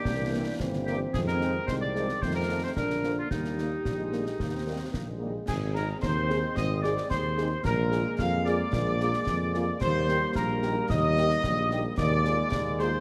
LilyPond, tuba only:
\new Staff \with { instrumentName = "Tuba" } { \clef bass \time 2/4 \key ees \major \tempo 4 = 111 c,4 g,,4 | f,4 c,4 | f,4 bes,,4 | ees,4 bes,,4 |
ees,4 bes,,4 | aes,,4 ees,4 | aes,,4 ees,4 | bes,,4 f,4 |
bes,,4 f,4 | ees,4 bes,,4 | ees,4 bes,,4 | ees,4 ees,4 | }